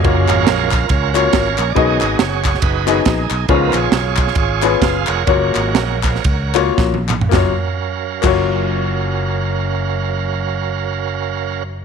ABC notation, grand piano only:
X:1
M:4/4
L:1/16
Q:"Swing" 1/4=128
K:F#
V:1 name="Grand piano"
[A,CEFc]4 z6 [A,CEFc]3 z3 | [B,DFGd]4 z6 [B,DFGd]3 z3 | [B,CEGc]4 z6 [B,CEGB]3 z3 | [A,CEFc]4 z6 [A,CEFc]3 z3 |
[A,EFc]2 z4 [A,EFc]8- [A,EFc]2- | [A,EFc]16 |]
V:2 name="Grand piano" clef=bass
z16 | B,,6 z8 z2 | C,6 z8 z2 | z16 |
F,,2 z4 F,,8- F,,2- | F,,16 |]